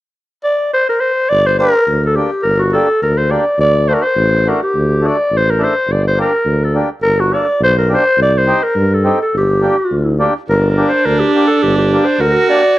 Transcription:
0.44 0.71 D5 medium
0.73 0.86 C5 medium
0.89 1.02 A#4 medium
1.00 1.30 C5 medium
1.29 1.65 G1 medium
1.29 1.48 D5 loud
1.46 1.58 C5 medium
1.59 1.73 A#3 medium
1.59 1.73 D4 medium
1.59 1.74 G4 medium
1.59 2.03 A#4 loud
1.87 2.21 D2 medium
2.03 2.18 A4 medium
2.03 2.08 A#4 medium
2.16 2.31 A#3 medium
2.16 2.30 D4 medium
2.16 2.44 G4 medium
2.16 2.31 G4 medium
2.43 2.78 G1 medium
2.43 2.60 A#4 medium
2.59 2.74 F#4 medium
2.73 2.87 A#3 medium
2.73 2.88 D4 medium
2.73 2.89 G4 medium
2.73 3.02 A4 medium
3.02 3.37 D2 medium
3.02 3.19 A#4 medium
3.17 3.33 C5 medium
3.30 3.45 A#3 medium
3.30 3.45 D4 medium
3.30 3.45 G4 medium
3.30 3.60 D5 medium
3.58 3.93 D2 loud
3.58 3.90 D5 loud
3.88 4.03 A3 medium
3.88 4.03 D4 medium
3.88 4.03 F#4 medium
3.88 3.96 C5 medium
3.94 4.04 A#4 medium
4.02 4.50 C5 medium
4.16 4.51 A1 loud
4.46 4.60 A3 medium
4.46 4.61 D4 medium
4.46 4.61 F#4 medium
4.46 4.62 A#4 medium
4.63 5.08 G4 medium
4.74 5.09 D2 medium
5.01 5.16 A3 medium
5.01 5.17 D4 medium
5.01 5.17 F#4 medium
5.07 5.39 D5 medium
5.31 5.66 A1 medium
5.37 5.52 C5 medium
5.50 5.65 A#4 medium
5.58 5.74 A3 medium
5.58 5.74 D4 medium
5.58 5.74 A4 medium
5.64 5.93 C5 medium
5.88 6.23 G1 loud
5.88 6.05 D5 medium
6.07 6.19 C5 medium
6.17 6.31 A#3 medium
6.17 6.32 D4 medium
6.17 6.33 G4 medium
6.21 6.65 A#4 medium
6.46 6.80 D2 medium
6.64 6.77 A4 medium
6.74 6.89 A#3 medium
6.74 6.89 D4 medium
6.74 6.90 G4 medium
7.02 7.37 G1 medium
7.02 7.21 A#4 medium
7.20 7.35 F#4 medium
7.32 7.46 A#3 medium
7.32 7.47 D4 medium
7.32 7.47 A4 medium
7.32 7.62 D5 medium
7.60 7.95 B1 loud
7.60 7.76 C5 medium
7.78 7.96 A#4 medium
7.89 8.04 A#3 medium
7.89 8.04 D4 medium
7.89 8.04 G4 medium
7.94 8.21 C5 medium
8.17 8.52 C2 medium
8.22 8.39 D5 medium
8.38 8.65 C5 medium
8.47 8.61 C4 medium
8.47 8.61 D#4 medium
8.47 8.62 G4 medium
8.63 8.95 A#4 medium
8.76 9.10 G2 loud
8.94 9.21 A4 medium
9.04 9.18 C4 medium
9.04 9.19 D#4 medium
9.04 9.19 G4 medium
9.22 9.34 A4 medium
9.33 9.68 G1 medium
9.33 10.17 G4 medium
9.61 9.76 A#3 medium
9.61 9.76 D4 medium
9.61 9.76 G4 medium
9.91 10.25 D2 medium
10.19 10.33 A#3 medium
10.19 10.34 D4 medium
10.19 10.34 G4 medium
10.48 10.83 G1 loud
10.48 12.22 D4 medium
10.48 10.67 A#4 medium
10.70 10.90 A#4 medium
10.77 10.91 A#3 medium
10.77 10.91 D4 medium
10.77 10.91 G4 medium
10.89 11.07 C5 medium
11.05 11.23 D2 medium
11.05 11.21 A#4 medium
11.19 11.46 G4 medium
11.34 11.48 A#3 medium
11.34 11.49 D4 medium
11.34 11.49 G4 medium
11.47 11.64 A4 medium
11.63 11.97 G1 loud
11.63 11.77 G4 medium
11.78 12.06 G4 medium
11.93 12.06 A#3 medium
11.93 12.07 D4 medium
11.93 12.07 G4 medium
12.05 12.22 C5 medium
12.19 12.36 D2 medium
12.19 12.79 F#4 loud
12.19 12.49 A#4 medium
12.49 12.63 A#3 medium
12.49 12.63 D4 medium
12.49 12.63 G4 medium
12.49 12.79 D5 loud

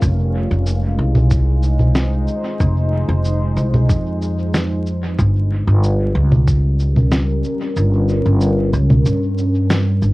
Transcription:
0.00 0.48 F1 medium
0.00 5.18 G#3 loud
0.00 10.13 F4 medium
0.00 1.54 A#4 medium
0.00 10.13 F5 medium
0.00 kick loud
0.00 shaker soft
0.22 6.55 D#4 medium
0.51 0.96 F1 medium
0.66 shaker soft
0.97 2.25 C2 medium
0.97 6.28 C5 medium
1.15 low conga medium
1.31 kick loud
1.31 shaker soft
1.63 shaker soft
1.79 low conga medium
1.95 snare medium
1.95 shaker soft
2.27 shaker soft
2.60 3.06 F1 medium
2.60 kick loud
2.60 shaker soft
3.09 3.54 F1 medium
3.25 shaker soft
3.57 3.85 C2 medium
3.57 shaker soft
3.74 low conga medium
3.89 5.15 F2 medium
3.89 kick loud
3.89 shaker soft
4.22 shaker soft
4.54 snare medium
4.54 shaker soft
4.86 shaker soft
5.19 5.64 G1 loud
5.19 10.13 G3 medium
5.19 kick loud
5.19 shaker soft
5.46 10.13 C#4 medium
5.67 6.12 G1 medium
5.67 10.13 A#4 medium
5.83 shaker soft
6.15 7.41 C#2 loud
6.32 low conga medium
6.48 kick loud
6.48 shaker soft
6.80 shaker soft
6.96 low conga medium
7.12 snare medium
7.12 shaker soft
7.44 shaker soft
7.76 8.22 G1 loud
7.76 shaker soft
8.09 shaker soft
8.26 8.70 G1 medium
8.41 shaker medium
8.73 9.02 C#2 loud
8.73 shaker soft
8.90 low conga medium
9.05 10.01 G2 medium
9.05 shaker medium
9.38 shaker soft
9.70 snare medium
9.70 shaker medium
10.02 10.13 G1 medium
10.02 shaker soft

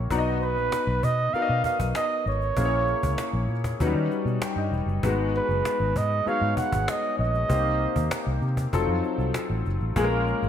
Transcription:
0.00 0.13 A#3 medium
0.00 0.13 E4 medium
0.00 0.11 F#4 medium
0.00 0.12 G4 medium
0.00 0.12 C#5 medium
0.10 0.57 B1 medium
0.10 1.04 B3 medium
0.10 1.04 D#4 medium
0.10 1.04 F#4 medium
0.10 0.18 D5 medium
0.10 1.04 A#5 medium
0.10 cajon bass loud
0.18 1.08 D#5 medium
0.26 cajon slap soft
0.41 1.05 B4 medium
0.41 cajon slap soft
0.57 0.69 A#1 medium
0.57 cajon slap soft
0.72 cajon slap loud
0.87 0.99 B1 loud
1.03 1.27 B2 medium
1.03 1.35 D#5 medium
1.03 cajon bass medium
1.19 cajon slap soft
1.34 2.28 B3 medium
1.34 2.28 D#4 medium
1.34 2.28 F#4 medium
1.34 2.28 A#4 medium
1.34 1.41 D5 medium
1.34 1.65 F5 loud
1.34 muted fingered electric bass stroke soft
1.34 cajon slap soft
1.42 2.31 D#5 medium
1.49 1.61 B2 loud
1.64 1.79 F5 medium
1.64 cajon bass medium
1.80 1.92 B1 medium
1.80 cajon bass medium
1.80 cajon slap soft
1.95 2.25 D#5 medium
1.95 cajon slap loud
2.26 2.50 G#1 medium
2.26 3.46 C#5 medium
2.26 cajon slap soft
2.41 cajon slap soft
2.56 2.93 A#1 loud
2.56 3.50 A#3 medium
2.56 3.50 C#4 medium
2.56 3.51 E4 medium
2.56 3.51 G#4 medium
2.56 2.64 C5 medium
2.56 cajon bass loud
2.65 3.54 C#5 medium
2.87 cajon slap soft
3.03 3.15 C#2 medium
3.03 cajon bass medium
3.18 cajon slap loud
3.33 3.46 A#1 loud
3.48 3.73 A#2 medium
3.48 cajon slap soft
3.64 cajon bass medium
3.64 cajon slap soft
3.80 3.92 D#2 loud
3.80 3.87 F#3 medium
3.80 4.73 C#4 medium
3.80 4.74 D#4 medium
3.80 4.74 F#4 medium
3.80 4.74 B4 medium
3.80 cajon bass medium
3.87 4.77 G3 medium
3.95 4.07 D#3 medium
4.11 cajon slap soft
4.25 4.38 B2 medium
4.25 cajon slap soft
4.42 4.56 G5 medium
4.42 cajon slap loud
4.56 4.68 G2 medium
4.56 5.00 D#5 medium
4.71 4.84 E1 medium
4.71 cajon slap soft
4.86 4.99 F#1 medium
4.86 cajon slap soft
5.03 5.39 G#1 medium
5.03 5.96 G#3 medium
5.03 5.96 B3 medium
5.03 5.97 D#4 medium
5.03 5.97 F#4 medium
5.03 5.97 B4 medium
5.03 cajon bass loud
5.18 cajon slap soft
5.34 5.99 B4 medium
5.34 cajon slap soft
5.49 5.61 F#1 medium
5.49 cajon slap soft
5.65 cajon slap medium
5.80 5.92 G#1 medium
5.96 6.20 G#2 loud
5.96 6.30 D#5 medium
5.96 cajon bass medium
6.11 cajon slap soft
6.26 7.20 G#3 medium
6.26 7.20 B3 medium
6.26 7.20 D#4 medium
6.26 7.20 F#4 medium
6.26 7.20 C#5 medium
6.26 6.57 F5 loud
6.26 muted fingered electric bass stroke soft
6.26 cajon slap soft
6.41 6.54 G#2 medium
6.57 6.91 F#5 medium
6.57 cajon bass medium
6.72 6.85 G#1 medium
6.72 cajon bass medium
6.72 cajon slap soft
6.88 7.19 D#5 medium
6.88 cajon slap loud
7.19 7.43 A#1 medium
7.19 8.38 D#5 medium
7.19 cajon slap soft
7.34 cajon slap soft
7.49 7.86 C2 medium
7.49 8.43 A#3 medium
7.49 8.43 C4 medium
7.49 8.43 D#4 medium
7.49 8.43 G4 medium
7.49 8.43 C5 medium
7.49 cajon bass loud
7.81 cajon slap soft
7.96 8.08 D#2 medium
7.96 cajon bass medium
8.11 cajon slap loud
8.27 8.39 C2 medium
8.41 8.66 C3 medium
8.41 cajon slap soft
8.57 cajon bass medium
8.57 cajon slap soft
8.73 8.85 F1 loud
8.73 9.66 F#3 medium
8.73 9.66 C4 medium
8.73 9.66 D#4 medium
8.73 9.67 F4 medium
8.73 9.67 A4 medium
8.73 cajon bass medium
8.88 9.00 F2 medium
9.04 cajon slap soft
9.18 9.30 C2 medium
9.18 cajon slap soft
9.34 cajon slap loud
9.50 9.62 A1 medium
9.65 9.77 F#1 medium
9.65 cajon slap soft
9.81 9.93 A1 medium
9.81 cajon slap soft
9.96 10.32 A#1 medium
9.96 10.49 G#3 medium
9.96 10.49 A#3 medium
9.96 10.49 C#4 medium
9.96 10.49 F4 medium
9.96 10.03 G#4 medium
9.96 cajon bass loud
10.04 10.49 A#4 medium
10.11 cajon slap soft
10.27 cajon slap soft
10.42 10.49 G#1 medium
10.42 cajon slap soft

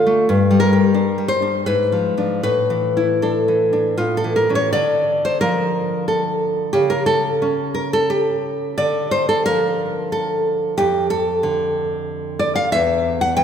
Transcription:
0.00 0.25 D3 medium
0.00 0.29 F4 medium
0.00 0.29 A4 medium
0.00 0.26 F5 medium
0.06 0.29 A3 medium
0.29 1.62 G2 medium
0.51 1.17 G3 medium
0.60 1.26 A#4 medium
0.73 1.66 G4 medium
0.94 1.41 D4 medium
1.18 1.66 G3 soft
1.28 1.64 C5 medium
1.42 1.66 D4 soft
1.66 2.41 G#2 medium
1.66 2.40 B4 medium
1.92 2.16 F3 soft
2.17 2.41 F3 soft
2.17 2.41 D4 soft
2.43 3.93 A2 medium
2.43 3.19 B4 medium
2.70 3.47 E3 soft
2.97 3.97 E4 medium
3.22 3.72 D4 medium
3.22 3.94 A4 medium
3.48 3.97 E3 soft
3.73 3.97 D4 soft
3.97 4.70 A2 medium
3.97 4.16 F4 medium
4.17 4.35 A4 medium
4.24 4.48 E3 soft
4.36 4.54 A#4 medium
4.49 4.70 E3 soft
4.49 4.71 C#4 soft
4.55 4.72 C#5 medium
4.73 6.71 D3 medium
4.73 5.23 D5 loud
5.25 5.40 C5 medium
5.41 6.73 F3 medium
5.41 6.05 A#4 loud
6.08 6.71 A4 medium
6.73 8.74 C#3 medium
6.73 6.90 G4 medium
6.90 7.06 A#4 medium
7.06 7.73 A4 medium
7.42 8.78 C#4 medium
7.74 7.92 A#4 medium
7.93 8.10 A4 medium
8.10 8.75 G4 medium
8.78 10.74 D3 medium
8.78 9.11 D5 medium
9.11 9.28 C5 medium
9.29 9.45 A4 medium
9.46 10.79 F3 soft
9.46 10.10 A#4 loud
10.12 10.75 A4 medium
10.78 12.68 F2 medium
10.78 11.09 G4 loud
11.10 12.04 A4 medium
11.43 12.72 D3 medium
12.39 12.55 D5 medium
12.55 12.72 F5 medium
12.72 13.44 E2 medium
12.72 13.18 E5 loud
13.21 13.36 F#5 medium
13.37 13.44 E3 medium
13.37 13.44 G5 medium

